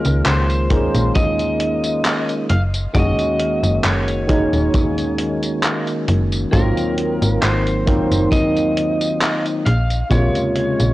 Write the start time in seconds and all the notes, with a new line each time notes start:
Already playing: D#3 G#3 A#3 C#4 F4 A#4
0.05 C#2, closed hi-hat, tambourine
0.26 C#2 C5, clap, closed hi-hat, tambourine
0.50 closed hi-hat, tambourine
0.69 D#3 G#3 A#3 C#4 D#4, kick, closed hi-hat
0.94 A#1, closed hi-hat, tambourine
1.15 D#5, kick, closed hi-hat, tambourine
1.39 closed hi-hat, tambourine
1.60 closed hi-hat
1.84 closed hi-hat, tambourine
2.05 clap, closed hi-hat, tambourine
2.29 closed hi-hat, tambourine
2.50 F#1 F5, closed hi-hat
2.74 closed hi-hat, tambourine
2.93 F#1 D#3 G#3 A#3 C#4 F#4 D#5, kick, closed hi-hat, tambourine
3.19 closed hi-hat, tambourine
3.39 closed hi-hat
3.63 F#1, closed hi-hat, tambourine
3.84 F#1 C#5, clap, closed hi-hat, tambourine
4.08 closed hi-hat, tambourine
4.28 D#3 G#3 A#3 C#4 D#4, kick, closed hi-hat
4.53 D#1, closed hi-hat, tambourine
4.74 kick, closed hi-hat, tambourine
4.98 closed hi-hat, tambourine
5.18 closed hi-hat
5.43 closed hi-hat, tambourine
5.63 clap, closed hi-hat, tambourine
5.87 closed hi-hat, tambourine
6.08 F#1, closed hi-hat
6.32 closed hi-hat, tambourine
6.51 G#1 D#3 F#3 A#3 C4 F4 A#4, kick, closed hi-hat, tambourine
6.77 closed hi-hat, tambourine
6.98 closed hi-hat
7.22 G#1, closed hi-hat, tambourine
7.42 G#1 C5, clap, closed hi-hat, tambourine
7.67 closed hi-hat, tambourine
7.86 D#3 F#3 A#3 C4 D#4, kick, closed hi-hat
8.11 F#1, closed hi-hat, tambourine
8.32 D#5, kick, closed hi-hat, tambourine
8.57 closed hi-hat, tambourine
8.77 closed hi-hat
9.01 closed hi-hat, tambourine
9.22 clap, closed hi-hat, tambourine
9.46 closed hi-hat, tambourine
9.66 A#1 F5, closed hi-hat
9.90 closed hi-hat, tambourine
10.09 A#1 C3 C#3 G#3 A#3 F4 C#5, kick, closed hi-hat, tambourine
10.35 closed hi-hat, tambourine
10.56 closed hi-hat
10.80 A#1, closed hi-hat, tambourine